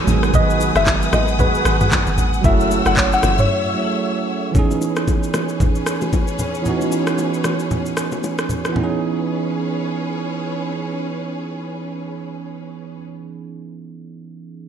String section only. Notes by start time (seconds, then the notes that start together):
Already playing: G#5
0.07 B4 F#5 D#6
2.44 C#5 E5 E6
4.55 C#4 G#4 B4 C#5
8.76 C#4 G#4 B4 C#5